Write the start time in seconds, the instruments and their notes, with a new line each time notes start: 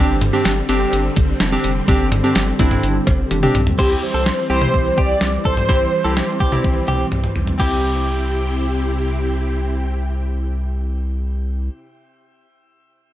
Already playing: analog synth bass G1, string machine G3, synth keys C4 D4 G4
0.00 string machine D3 C4
0.21 closed hi-hat, mid tom
0.33 synth keys C4 D4 G4
0.45 analog synth bass G1, snare, closed hi-hat
0.69 analog synth bass G1, synth keys C4 D4 G4, closed hi-hat
0.93 analog synth bass G1, closed hi-hat
1.16 analog synth bass G1, kick, closed hi-hat
1.40 analog synth bass F1, synth keys D4 E4, snare, closed hi-hat
1.52 synth keys C4 D4 G4
1.64 analog synth bass F1, closed hi-hat
1.88 analog synth bass G1, synth keys C4 D4 G4, kick, closed hi-hat
2.12 closed hi-hat, mid tom
2.24 synth keys C4 D4 G4
2.35 analog synth bass G1, snare, closed hi-hat
2.59 analog synth bass G1, synth keys C4 D4 E4, kick, closed hi-hat
2.71 mid tom
2.83 analog synth bass G1, closed hi-hat
3.07 analog synth bass G1, kick, closed hi-hat, cowbell
3.31 analog synth bass F1, synth keys D4 G4, closed hi-hat, high tom
3.43 synth keys C4 D4 G4, mid tom
3.55 analog synth bass B1, closed hi-hat, mid tom
3.67 floor tom
3.79 analog synth bass C2, string machine E3 G3 C4, synth keys C4 E4 G4, analog polysynth G4, clean electric guitar C5, kick, crash
4.03 analog polysynth C5
4.14 analog synth bass C2, clean electric guitar A4
4.26 snare
4.50 analog synth bass C2, synth keys C4 E4 G4, clean electric guitar G4, analog polysynth C5
4.62 mid tom
4.74 analog synth bass C2, kick
4.98 analog synth bass C2, clean electric guitar G4, analog polysynth D5, kick
5.21 analog synth bass C2, snare
5.45 analog synth bass B1, clean electric guitar A4, analog polysynth C5, kick
5.57 synth keys E4 A4, mid tom
5.69 analog synth bass C2, synth keys C4 E4 G4, string machine C4, clean electric guitar C5, kick
6.04 analog synth bass C2, synth keys C4 E4 G4, clean electric guitar A4
6.17 snare
6.40 analog synth bass C2, clean electric guitar G4, kick
6.52 synth keys C4 E4 G4, mid tom
6.64 analog synth bass C2, kick, high tom
6.88 analog synth bass C2, clean electric guitar G4, mid tom
7.12 analog synth bass C2, mid tom
7.24 mid tom
7.36 analog synth bass B1, floor tom
7.47 floor tom
7.58 analog synth bass C2, string machine C3 C4 E4 G4 G5, synth keys C4 E4, clean electric guitar G4, kick, crash
7.62 synth keys G4